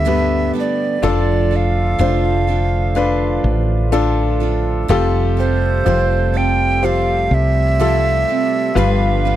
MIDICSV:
0, 0, Header, 1, 6, 480
1, 0, Start_track
1, 0, Tempo, 967742
1, 508, Time_signature, 4, 2, 24, 8
1, 4644, End_track
2, 0, Start_track
2, 0, Title_t, "Recorder"
2, 0, Program_c, 0, 74
2, 0, Note_on_c, 0, 76, 88
2, 260, Note_off_c, 0, 76, 0
2, 297, Note_on_c, 0, 74, 68
2, 507, Note_off_c, 0, 74, 0
2, 534, Note_on_c, 0, 74, 79
2, 773, Note_on_c, 0, 77, 87
2, 781, Note_off_c, 0, 74, 0
2, 1721, Note_off_c, 0, 77, 0
2, 2676, Note_on_c, 0, 72, 98
2, 3159, Note_on_c, 0, 79, 94
2, 3167, Note_off_c, 0, 72, 0
2, 3397, Note_on_c, 0, 77, 92
2, 3405, Note_off_c, 0, 79, 0
2, 3641, Note_on_c, 0, 76, 106
2, 3648, Note_off_c, 0, 77, 0
2, 4358, Note_on_c, 0, 77, 97
2, 4365, Note_off_c, 0, 76, 0
2, 4644, Note_off_c, 0, 77, 0
2, 4644, End_track
3, 0, Start_track
3, 0, Title_t, "Grand piano"
3, 0, Program_c, 1, 0
3, 0, Control_c, 1, 64, 127
3, 0, Note_on_c, 1, 59, 56
3, 0, Note_on_c, 1, 67, 51
3, 0, Note_on_c, 1, 69, 70
3, 0, Note_on_c, 1, 71, 63
3, 33, Note_off_c, 1, 59, 0
3, 33, Note_on_c, 1, 59, 62
3, 35, Note_off_c, 1, 67, 0
3, 35, Note_on_c, 1, 67, 55
3, 37, Note_off_c, 1, 71, 0
3, 37, Note_on_c, 1, 71, 65
3, 487, Note_off_c, 1, 59, 0
3, 488, Note_off_c, 1, 67, 0
3, 489, Note_off_c, 1, 71, 0
3, 507, Note_on_c, 1, 62, 77
3, 508, Note_on_c, 1, 65, 69
3, 513, Note_off_c, 1, 69, 0
3, 513, Note_on_c, 1, 69, 91
3, 515, Control_c, 1, 64, 0
3, 597, Control_c, 1, 64, 127
3, 964, Note_off_c, 1, 62, 0
3, 964, Note_off_c, 1, 65, 0
3, 967, Note_off_c, 1, 69, 0
3, 990, Note_on_c, 1, 62, 63
3, 992, Note_on_c, 1, 65, 57
3, 994, Note_on_c, 1, 72, 69
3, 1445, Note_off_c, 1, 62, 0
3, 1446, Note_off_c, 1, 65, 0
3, 1447, Note_off_c, 1, 72, 0
3, 1467, Note_on_c, 1, 62, 72
3, 1467, Note_on_c, 1, 65, 64
3, 1469, Note_on_c, 1, 71, 79
3, 1923, Note_off_c, 1, 65, 0
3, 1924, Note_off_c, 1, 62, 0
3, 1925, Note_off_c, 1, 71, 0
3, 1945, Note_on_c, 1, 62, 80
3, 1945, Note_on_c, 1, 65, 69
3, 1945, Note_on_c, 1, 69, 86
3, 2402, Note_off_c, 1, 62, 0
3, 2403, Note_off_c, 1, 65, 0
3, 2403, Note_off_c, 1, 69, 0
3, 2429, Note_on_c, 1, 65, 99
3, 2431, Note_on_c, 1, 67, 88
3, 2432, Note_on_c, 1, 69, 102
3, 2434, Control_c, 1, 64, 0
3, 2523, Control_c, 1, 64, 127
3, 2885, Note_off_c, 1, 65, 0
3, 2885, Note_off_c, 1, 67, 0
3, 2886, Note_off_c, 1, 69, 0
3, 2902, Note_on_c, 1, 65, 65
3, 2904, Note_on_c, 1, 67, 60
3, 2906, Note_on_c, 1, 72, 71
3, 3361, Note_off_c, 1, 65, 0
3, 3362, Note_off_c, 1, 67, 0
3, 3363, Note_off_c, 1, 72, 0
3, 3384, Note_on_c, 1, 65, 63
3, 3385, Note_on_c, 1, 67, 61
3, 3386, Note_on_c, 1, 72, 72
3, 3842, Note_off_c, 1, 65, 0
3, 3843, Note_off_c, 1, 67, 0
3, 3843, Note_off_c, 1, 72, 0
3, 3867, Note_on_c, 1, 65, 67
3, 3870, Note_on_c, 1, 67, 65
3, 3872, Note_on_c, 1, 69, 79
3, 4324, Note_off_c, 1, 65, 0
3, 4325, Note_off_c, 1, 67, 0
3, 4326, Note_off_c, 1, 69, 0
3, 4340, Note_on_c, 1, 65, 85
3, 4341, Note_on_c, 1, 43, 60
3, 4342, Note_on_c, 1, 71, 92
3, 4344, Note_on_c, 1, 67, 73
3, 4354, Control_c, 1, 64, 0
3, 4445, Control_c, 1, 64, 127
3, 4644, Note_off_c, 1, 43, 0
3, 4644, Note_off_c, 1, 65, 0
3, 4644, Note_off_c, 1, 67, 0
3, 4644, Note_off_c, 1, 71, 0
3, 4644, End_track
4, 0, Start_track
4, 0, Title_t, "Steel-string acoustic guitar"
4, 0, Program_c, 2, 25
4, 24, Note_on_c, 2, 43, 63
4, 28, Note_on_c, 2, 50, 66
4, 29, Note_on_c, 2, 55, 64
4, 31, Note_on_c, 2, 59, 62
4, 32, Note_on_c, 2, 62, 63
4, 35, Note_on_c, 2, 69, 67
4, 260, Note_off_c, 2, 69, 0
4, 266, Note_off_c, 2, 43, 0
4, 266, Note_off_c, 2, 62, 0
4, 266, Note_on_c, 2, 69, 45
4, 268, Note_off_c, 2, 50, 0
4, 269, Note_off_c, 2, 55, 0
4, 270, Note_off_c, 2, 59, 0
4, 272, Note_on_c, 2, 62, 41
4, 275, Note_on_c, 2, 59, 41
4, 279, Note_on_c, 2, 55, 39
4, 506, Note_off_c, 2, 62, 0
4, 507, Note_off_c, 2, 55, 0
4, 507, Note_off_c, 2, 69, 0
4, 509, Note_on_c, 2, 53, 67
4, 510, Note_off_c, 2, 59, 0
4, 512, Note_on_c, 2, 62, 70
4, 516, Note_on_c, 2, 65, 69
4, 518, Note_on_c, 2, 69, 70
4, 743, Note_off_c, 2, 69, 0
4, 749, Note_off_c, 2, 53, 0
4, 749, Note_off_c, 2, 65, 0
4, 749, Note_on_c, 2, 69, 44
4, 750, Note_off_c, 2, 62, 0
4, 755, Note_on_c, 2, 65, 41
4, 762, Note_on_c, 2, 62, 34
4, 983, Note_off_c, 2, 62, 0
4, 985, Note_on_c, 2, 53, 60
4, 986, Note_off_c, 2, 65, 0
4, 988, Note_off_c, 2, 69, 0
4, 989, Note_on_c, 2, 62, 69
4, 992, Note_on_c, 2, 65, 70
4, 996, Note_on_c, 2, 69, 72
4, 1220, Note_off_c, 2, 69, 0
4, 1226, Note_off_c, 2, 53, 0
4, 1226, Note_on_c, 2, 69, 46
4, 1227, Note_off_c, 2, 65, 0
4, 1228, Note_off_c, 2, 62, 0
4, 1233, Note_on_c, 2, 65, 43
4, 1239, Note_on_c, 2, 62, 39
4, 1462, Note_off_c, 2, 62, 0
4, 1463, Note_on_c, 2, 53, 62
4, 1466, Note_off_c, 2, 65, 0
4, 1467, Note_off_c, 2, 69, 0
4, 1468, Note_on_c, 2, 62, 58
4, 1472, Note_on_c, 2, 65, 61
4, 1476, Note_on_c, 2, 69, 60
4, 1942, Note_off_c, 2, 62, 0
4, 1943, Note_off_c, 2, 53, 0
4, 1945, Note_on_c, 2, 53, 69
4, 1948, Note_off_c, 2, 65, 0
4, 1948, Note_on_c, 2, 62, 77
4, 1950, Note_on_c, 2, 65, 83
4, 1951, Note_off_c, 2, 69, 0
4, 1953, Note_on_c, 2, 69, 83
4, 2177, Note_off_c, 2, 69, 0
4, 2183, Note_off_c, 2, 65, 0
4, 2183, Note_on_c, 2, 69, 48
4, 2187, Note_off_c, 2, 53, 0
4, 2188, Note_off_c, 2, 62, 0
4, 2189, Note_on_c, 2, 65, 47
4, 2197, Note_on_c, 2, 62, 45
4, 2422, Note_on_c, 2, 53, 76
4, 2424, Note_off_c, 2, 62, 0
4, 2426, Note_off_c, 2, 69, 0
4, 2426, Note_on_c, 2, 60, 86
4, 2427, Note_off_c, 2, 65, 0
4, 2429, Note_on_c, 2, 67, 86
4, 2431, Note_on_c, 2, 69, 85
4, 2657, Note_off_c, 2, 69, 0
4, 2663, Note_on_c, 2, 69, 50
4, 2665, Note_off_c, 2, 53, 0
4, 2665, Note_off_c, 2, 67, 0
4, 2667, Note_off_c, 2, 60, 0
4, 2671, Note_on_c, 2, 67, 44
4, 2676, Note_on_c, 2, 60, 38
4, 2903, Note_off_c, 2, 60, 0
4, 2905, Note_off_c, 2, 69, 0
4, 2906, Note_off_c, 2, 67, 0
4, 2906, Note_on_c, 2, 53, 69
4, 2909, Note_on_c, 2, 60, 73
4, 2912, Note_on_c, 2, 67, 76
4, 2915, Note_on_c, 2, 69, 78
4, 3137, Note_off_c, 2, 69, 0
4, 3143, Note_on_c, 2, 69, 51
4, 3145, Note_off_c, 2, 67, 0
4, 3147, Note_off_c, 2, 53, 0
4, 3148, Note_off_c, 2, 60, 0
4, 3151, Note_on_c, 2, 67, 43
4, 3157, Note_on_c, 2, 60, 37
4, 3385, Note_off_c, 2, 60, 0
4, 3386, Note_off_c, 2, 69, 0
4, 3386, Note_on_c, 2, 53, 54
4, 3389, Note_off_c, 2, 67, 0
4, 3391, Note_on_c, 2, 60, 58
4, 3395, Note_on_c, 2, 67, 58
4, 3400, Note_on_c, 2, 69, 62
4, 3864, Note_off_c, 2, 53, 0
4, 3864, Note_off_c, 2, 60, 0
4, 3866, Note_on_c, 2, 53, 65
4, 3870, Note_off_c, 2, 67, 0
4, 3870, Note_off_c, 2, 69, 0
4, 3870, Note_on_c, 2, 60, 74
4, 3872, Note_on_c, 2, 67, 73
4, 3876, Note_on_c, 2, 69, 75
4, 4099, Note_off_c, 2, 69, 0
4, 4104, Note_on_c, 2, 69, 46
4, 4106, Note_off_c, 2, 67, 0
4, 4107, Note_off_c, 2, 53, 0
4, 4109, Note_off_c, 2, 60, 0
4, 4112, Note_on_c, 2, 67, 45
4, 4118, Note_on_c, 2, 60, 41
4, 4346, Note_off_c, 2, 69, 0
4, 4348, Note_on_c, 2, 43, 75
4, 4350, Note_off_c, 2, 67, 0
4, 4350, Note_on_c, 2, 50, 72
4, 4352, Note_off_c, 2, 60, 0
4, 4352, Note_on_c, 2, 53, 73
4, 4354, Note_on_c, 2, 59, 73
4, 4354, Note_on_c, 2, 62, 80
4, 4357, Note_on_c, 2, 71, 85
4, 4582, Note_off_c, 2, 71, 0
4, 4586, Note_off_c, 2, 62, 0
4, 4588, Note_off_c, 2, 43, 0
4, 4588, Note_on_c, 2, 71, 52
4, 4589, Note_off_c, 2, 50, 0
4, 4590, Note_off_c, 2, 53, 0
4, 4591, Note_off_c, 2, 59, 0
4, 4592, Note_on_c, 2, 62, 45
4, 4597, Note_on_c, 2, 59, 48
4, 4600, Note_on_c, 2, 53, 39
4, 4644, Note_off_c, 2, 53, 0
4, 4644, Note_off_c, 2, 59, 0
4, 4644, Note_off_c, 2, 62, 0
4, 4644, Note_off_c, 2, 71, 0
4, 4644, End_track
5, 0, Start_track
5, 0, Title_t, "Tonewheel organ"
5, 0, Program_c, 3, 16
5, 0, Note_on_c, 3, 50, 50
5, 0, Note_on_c, 3, 57, 44
5, 0, Note_on_c, 3, 59, 46
5, 0, Note_on_c, 3, 67, 56
5, 489, Note_off_c, 3, 50, 0
5, 489, Note_off_c, 3, 57, 0
5, 490, Note_off_c, 3, 59, 0
5, 490, Note_off_c, 3, 67, 0
5, 513, Note_on_c, 3, 57, 51
5, 514, Note_on_c, 3, 50, 53
5, 514, Note_on_c, 3, 65, 59
5, 515, Note_on_c, 3, 53, 52
5, 2412, Note_off_c, 3, 50, 0
5, 2413, Note_off_c, 3, 53, 0
5, 2428, Note_on_c, 3, 48, 56
5, 2430, Note_on_c, 3, 55, 50
5, 3371, Note_off_c, 3, 65, 0
5, 3384, Note_on_c, 3, 67, 66
5, 4329, Note_off_c, 3, 48, 0
5, 4330, Note_off_c, 3, 55, 0
5, 4331, Note_off_c, 3, 57, 0
5, 4336, Note_off_c, 3, 67, 0
5, 4345, Note_on_c, 3, 55, 55
5, 4346, Note_on_c, 3, 50, 60
5, 4347, Note_on_c, 3, 59, 54
5, 4347, Note_on_c, 3, 65, 67
5, 4644, Note_off_c, 3, 50, 0
5, 4644, Note_off_c, 3, 55, 0
5, 4644, Note_off_c, 3, 59, 0
5, 4644, Note_off_c, 3, 65, 0
5, 4644, End_track
6, 0, Start_track
6, 0, Title_t, "Fretless electric bass"
6, 0, Program_c, 4, 35
6, 0, Note_on_c, 4, 38, 74
6, 249, Note_off_c, 4, 38, 0
6, 512, Note_on_c, 4, 29, 87
6, 970, Note_off_c, 4, 29, 0
6, 988, Note_on_c, 4, 29, 86
6, 1688, Note_off_c, 4, 29, 0
6, 1706, Note_on_c, 4, 33, 76
6, 2407, Note_off_c, 4, 33, 0
6, 2427, Note_on_c, 4, 29, 83
6, 2888, Note_off_c, 4, 29, 0
6, 2908, Note_on_c, 4, 29, 82
6, 3608, Note_off_c, 4, 29, 0
6, 3625, Note_on_c, 4, 36, 73
6, 4087, Note_off_c, 4, 36, 0
6, 4345, Note_on_c, 4, 31, 88
6, 4644, Note_off_c, 4, 31, 0
6, 4644, End_track
0, 0, End_of_file